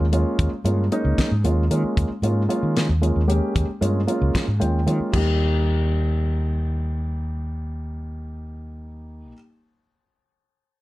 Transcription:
0.00 fretless electric bass D#2
0.12 grand piano G#3 A#3 C#4 F4, closed hi-hat
0.39 fretless electric bass D#2, kick, closed hi-hat
0.52 muted fretless electric bass stroke
0.64 fretless electric bass G2, grand piano G#3 A#3 C#4 F4, closed hi-hat
0.92 grand piano G#3 A#3 C#4 D#4, closed hi-hat
1.05 fretless electric bass C#2
1.18 kick, snare, closed hi-hat
1.31 fretless electric bass G#2
1.44 fretless electric bass D#2, grand piano G#3 A#3 C#4 F4, closed hi-hat
1.71 fretless electric bass D#3, grand piano G#3 A#3 C#4 F4, closed hi-hat
1.84 muted fretless electric bass stroke
1.97 fretless electric bass D#2, kick, closed hi-hat
2.10 muted fretless electric bass stroke
2.22 fretless electric bass G#2, grand piano G#3 A#3 C#4 F4, closed hi-hat
2.49 grand piano G#3 A#3 C#4 F4, closed hi-hat
2.63 fretless electric bass D#3
2.77 snare, closed hi-hat
2.89 fretless electric bass D#2
3.02 grand piano G#3 A#3 C#4 F4, closed hi-hat
3.16 fretless electric bass D#2
3.28 grand piano G#3 A#3 C#4 G4, closed hi-hat
3.56 fretless electric bass D#2, kick, closed hi-hat
3.69 muted fretless electric bass stroke
3.81 fretless electric bass G2, grand piano G#3 A#3 C#4 F4, closed hi-hat
4.07 grand piano G#3 A#3 C#4 F4, closed hi-hat
4.21 fretless electric bass C#2
4.35 kick, snare, closed hi-hat
4.48 fretless electric bass G#2
4.60 fretless electric bass D#2, grand piano G#3 A#3 C#4 F4 G5, closed hi-hat
4.86 fretless electric bass D#3, grand piano G#3 A#3 C#4 F4, closed hi-hat
5.00 muted fretless electric bass stroke
5.12 fretless electric bass D#2, grand piano G3 A#3 D#4 G4, kick, crash

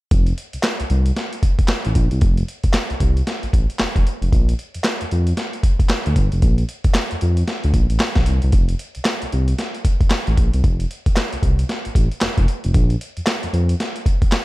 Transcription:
0.11 analog synth bass F1, kick, closed hi-hat
0.27 closed hi-hat
0.38 closed hi-hat
0.53 analog synth bass C2, closed hi-hat
0.63 snare, clap, closed hi-hat
0.80 analog synth bass C2, closed hi-hat
0.90 analog synth bass C2, closed hi-hat
1.06 closed hi-hat
1.16 snare, closed hi-hat
1.33 closed hi-hat
1.43 kick, closed hi-hat
1.59 kick, closed hi-hat
1.68 snare, clap, closed hi-hat
1.85 analog synth bass A1, closed hi-hat
1.95 analog synth bass A#1, kick, closed hi-hat
2.11 analog synth bass C2, closed hi-hat
2.21 analog synth bass F1, kick, closed hi-hat
2.37 closed hi-hat
2.48 closed hi-hat
2.64 analog synth bass C2, kick, closed hi-hat
2.73 snare, clap, closed hi-hat
2.90 analog synth bass C2, closed hi-hat
3.00 analog synth bass C2, kick, closed hi-hat
3.17 closed hi-hat
3.27 snare, closed hi-hat
3.43 analog synth bass A1, closed hi-hat
3.53 analog synth bass A1, kick, closed hi-hat
3.70 closed hi-hat
3.79 analog synth bass F1, snare, clap, closed hi-hat
3.96 analog synth bass F1, kick, closed hi-hat
4.07 closed hi-hat
4.22 analog synth bass F1, closed hi-hat
4.32 analog synth bass A#1, kick, closed hi-hat
4.49 closed hi-hat
4.59 closed hi-hat
4.74 analog synth bass F2, closed hi-hat
4.84 snare, clap, closed hi-hat
5.01 analog synth bass F2, closed hi-hat
5.11 analog synth bass F2, closed hi-hat
5.27 closed hi-hat
5.37 snare, closed hi-hat
5.53 closed hi-hat
5.63 kick, closed hi-hat
5.79 kick, closed hi-hat
5.89 snare, clap, closed hi-hat
6.06 analog synth bass D2, closed hi-hat
6.16 analog synth bass G1, kick, closed hi-hat
6.32 analog synth bass F1, closed hi-hat
6.42 analog synth bass A#1, kick, closed hi-hat
6.58 closed hi-hat
6.69 closed hi-hat
6.84 analog synth bass F2, kick, closed hi-hat
6.94 snare, clap, closed hi-hat
7.11 analog synth bass F2, closed hi-hat
7.21 analog synth bass F2, closed hi-hat
7.37 closed hi-hat
7.47 snare, closed hi-hat
7.64 analog synth bass D2, closed hi-hat
7.74 analog synth bass A#1, kick, closed hi-hat
7.90 analog synth bass A1, closed hi-hat
7.99 snare, clap, closed hi-hat
8.16 analog synth bass A#1, kick, snare, closed hi-hat
8.26 analog synth bass C2, closed hi-hat
8.42 analog synth bass C2, closed hi-hat
8.52 analog synth bass F1, kick, closed hi-hat
8.69 closed hi-hat
8.79 closed hi-hat
8.95 analog synth bass C2, closed hi-hat
9.05 snare, clap, closed hi-hat
9.22 analog synth bass C2, closed hi-hat
9.32 analog synth bass C2, closed hi-hat
9.48 closed hi-hat
9.58 snare, closed hi-hat
9.75 closed hi-hat
9.85 kick, closed hi-hat
10.01 kick, closed hi-hat
10.10 snare, clap, closed hi-hat
10.27 analog synth bass A1, closed hi-hat
10.37 analog synth bass A#1, kick, closed hi-hat
10.54 analog synth bass C2, closed hi-hat
10.64 analog synth bass F1, kick, closed hi-hat
10.80 closed hi-hat
10.91 closed hi-hat
11.06 analog synth bass C2, kick, closed hi-hat
11.16 snare, clap, closed hi-hat
11.33 analog synth bass C2, closed hi-hat
11.43 analog synth bass C2, kick, closed hi-hat
11.59 closed hi-hat
11.69 snare, closed hi-hat
11.85 analog synth bass A1, closed hi-hat
11.95 analog synth bass A1, kick, closed hi-hat
12.12 closed hi-hat
12.21 analog synth bass F1, snare, clap, closed hi-hat
12.38 analog synth bass F1, kick, closed hi-hat
12.48 closed hi-hat
12.64 analog synth bass F1, closed hi-hat
12.74 analog synth bass A#1, kick, closed hi-hat
12.90 closed hi-hat
13.01 closed hi-hat
13.17 analog synth bass F2, closed hi-hat
13.26 snare, clap, closed hi-hat
13.43 analog synth bass F2, closed hi-hat
13.53 analog synth bass F2, closed hi-hat
13.69 closed hi-hat
13.80 snare, closed hi-hat
13.96 closed hi-hat
14.06 kick, closed hi-hat
14.22 kick, closed hi-hat
14.32 snare, clap, closed hi-hat

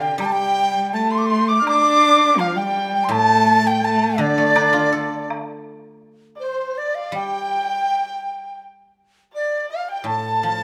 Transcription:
Already playing: guzheng C3, cello D3
0.01 erhu G5, dizi G5
0.18 guzheng G3, cello G3, dizi G5, erhu G5, high woodblock
0.25 dizi A5
0.32 cello G3, dizi G5, erhu G5
0.93 cello A3, dizi A5, erhu A5
1.11 dizi C6, erhu C6
1.18 dizi D6
1.26 erhu C6, dizi C6
1.48 erhu D6, dizi D6
1.61 erhu F6
1.65 cello D4, erhu D6, dizi D6, high woodblock
2.37 cello F3, dizi F5, erhu F5
2.55 cello G3, dizi G5, erhu G5
2.94 dizi G5
3.04 dizi C6
3.09 guzheng A2, cello A3, erhu A5, high woodblock
3.13 dizi A5
3.62 erhu A5
3.66 erhu G5, dizi G5
3.84 cello A3, erhu A5, dizi A5
4.18 guzheng D3, cello D3, erhu D5, dizi D5
4.38 guzheng A3
4.56 guzheng D4, high woodblock
4.73 guzheng F4
4.92 guzheng A4
5.30 high woodblock, low woodblock
6.36 dizi C5, erhu D5
6.43 erhu C5
6.78 dizi D5, erhu D5
6.95 dizi F5
7.12 guzheng G3, dizi G5, erhu G5
9.34 erhu D5, dizi D5
9.70 dizi F5, erhu F5
9.89 dizi G5, erhu G5
10.04 guzheng A2, erhu A5, dizi A5
10.43 guzheng F3

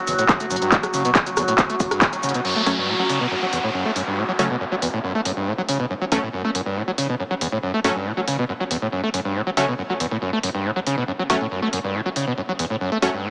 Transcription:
Already playing: synth drone F#3 F#4
0.07 sub bass F#1, acid bass E2, open hi-hat, shaker
0.19 acid bass A2, closed hi-hat, shaker
0.29 acid bass F#2, kick, cross-stick, clap, closed hi-hat, shaker
0.40 sub bass F#1, acid bass A3, closed hi-hat, shaker
0.51 sub bass F#1, acid bass F#2, open hi-hat, shaker
0.56 closed hi-hat
0.62 acid bass G2, closed hi-hat, shaker
0.72 acid bass A2, kick, clap, closed hi-hat, shaker
0.83 sub bass F#1, acid bass F#3, cross-stick, closed hi-hat, shaker
0.94 sub bass F#1, acid bass C#3, open hi-hat, shaker
1.05 acid bass B2, closed hi-hat, shaker
1.15 acid bass F#2, kick, clap, closed hi-hat, shaker
1.26 sub bass F#1, acid bass F#3, closed hi-hat, shaker
1.37 sub bass F#1, acid bass E2, cross-stick, open hi-hat, shaker
1.48 acid bass A2, closed hi-hat, shaker
1.58 acid bass F#2, kick, clap, closed hi-hat, shaker
1.70 sub bass F#1, acid bass A3, closed hi-hat, shaker
1.80 sub bass F#1, acid bass F#2, kick, open hi-hat, shaker
1.91 acid bass G2, cross-stick, closed hi-hat, shaker
2.02 acid bass A2, kick, clap, closed hi-hat, shaker
2.13 sub bass F#1, acid bass F#3, closed hi-hat, shaker
2.23 sub bass F#1, acid bass C#3, open hi-hat, shaker
2.29 closed hi-hat
2.34 acid bass B2, closed hi-hat, shaker
2.45 acid bass F#2, crash, downlifter
2.56 acid bass A3
2.66 acid bass F#2, supersaw synth F#3 A3 C#4, open hi-hat
2.78 acid bass G2
2.88 acid bass A2
2.99 acid bass F#3
3.10 acid bass C#3, open hi-hat
3.21 acid bass B2
3.31 acid bass F#2
3.42 acid bass F#3
3.53 acid bass E2, open hi-hat
3.64 acid bass A2
3.74 acid bass F#2
3.85 acid bass A3
3.96 acid bass F#2, open hi-hat
4.07 acid bass G2
4.18 acid bass A2
4.29 acid bass F#3
4.39 acid bass C#3, supersaw synth F#3 A3 C#4, open hi-hat
4.50 acid bass B2
4.61 acid bass F#2
4.72 acid bass F#3
4.82 acid bass E2, open hi-hat
4.93 acid bass A2
5.04 acid bass F#2
5.15 acid bass A3
5.25 acid bass F#2, open hi-hat
5.37 acid bass G2
5.47 acid bass A2
5.58 acid bass F#3
5.69 acid bass C#3, open hi-hat
5.80 acid bass B2
5.90 acid bass F#2
6.01 acid bass F#3
6.12 acid bass E2, supersaw synth F#3 A3 C#4, open hi-hat
6.23 acid bass A2
6.33 acid bass F#2
6.45 acid bass A3
6.55 acid bass F#2, open hi-hat
6.66 acid bass G2
6.77 acid bass A2
6.88 acid bass F#3
6.98 acid bass C#3, open hi-hat
7.09 acid bass B2
7.20 acid bass F#2
7.31 acid bass F#3
7.41 acid bass E2, open hi-hat
7.52 acid bass A2
7.63 acid bass F#2
7.74 acid bass A3
7.84 acid bass F#2, supersaw synth F#3 A3 C#4, open hi-hat
7.96 acid bass G2
8.06 acid bass A2
8.17 acid bass F#3
8.28 acid bass C#3, open hi-hat
8.39 acid bass B2
8.49 acid bass F#2
8.60 acid bass F#3
8.71 acid bass E2, open hi-hat
8.82 acid bass A2
8.92 acid bass F#2
9.04 acid bass A3
9.14 acid bass F#2, open hi-hat
9.25 acid bass G2
9.36 acid bass A2
9.47 acid bass F#3
9.57 acid bass C#3, supersaw synth F#3 A3 C#4, open hi-hat
9.68 acid bass B2
9.79 acid bass F#2
9.90 acid bass F#3
10.00 acid bass E2, open hi-hat
10.11 acid bass A2
10.22 acid bass F#2
10.33 acid bass A3
10.43 acid bass F#2, open hi-hat
10.55 acid bass G2
10.65 acid bass A2
10.76 acid bass F#3
10.87 acid bass C#3, open hi-hat
10.98 acid bass B2
11.08 acid bass F#2
11.19 acid bass F#3
11.30 acid bass E2, supersaw synth F#3 A3 C#4, open hi-hat
11.41 acid bass A2
11.51 acid bass F#2
11.62 acid bass A3
11.73 acid bass F#2, open hi-hat
11.84 acid bass G2
11.95 acid bass A2
12.06 acid bass F#3
12.16 acid bass C#3, open hi-hat
12.27 acid bass B2
12.38 acid bass F#2
12.49 acid bass F#3
12.59 acid bass E2, open hi-hat
12.70 acid bass A2
12.81 acid bass F#2, riser
12.92 acid bass A3
13.02 acid bass F#2, supersaw synth F#3 A3 C#4, open hi-hat
13.14 acid bass G2
13.24 acid bass A2

